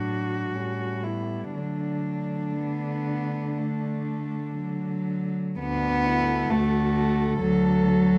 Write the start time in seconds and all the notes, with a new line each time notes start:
Already playing: A2 F#3 D4 F#4
0.53 A2 G3 C#4
1.02 B3 E4
1.54 D3 F#3 A3 D4
2.57 B3
3.58 A3
4.55 F#3
5.59 D2 B3 D4
6.05 E4 A4
6.50 D2 A3 F#4
6.95 A4
7.39 D2 F#3 A4
7.84 A4